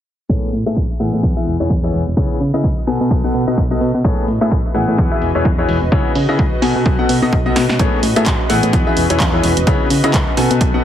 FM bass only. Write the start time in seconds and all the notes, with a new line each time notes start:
0.30 A1
0.53 A2
0.66 A2
0.76 A1
1.00 A2
1.13 A2
1.23 E2
1.47 E1
1.60 E1
1.70 E2
1.94 E1
2.07 E1
2.17 C#2
2.40 C#3
2.54 C#3
2.64 C#2
2.87 B2
3.01 B2
3.11 B1
3.34 B2
3.48 B2
3.58 B1
3.81 B2
3.94 B2
4.04 A1
4.28 A2
4.41 A2
4.51 A1
4.75 A2
4.88 A2
4.98 E2
5.22 E1
5.35 E1
5.45 E2
5.69 E1
5.82 E1
5.92 C#2
6.15 C#3
6.29 C#3
6.39 C#2
6.62 B2
6.76 B2
6.86 B1
7.09 B2
7.22 B2
7.33 B1
7.56 B2
7.69 B2
7.79 A1
8.03 A2
8.16 A2
8.26 A1
8.50 A2
8.63 A2
8.73 E2
8.97 E1
9.10 E1
9.20 E2
9.43 E1
9.57 E1
9.67 C#2
9.90 C#3
10.04 C#3
10.14 C#2
10.37 B2
10.51 B2
10.61 B1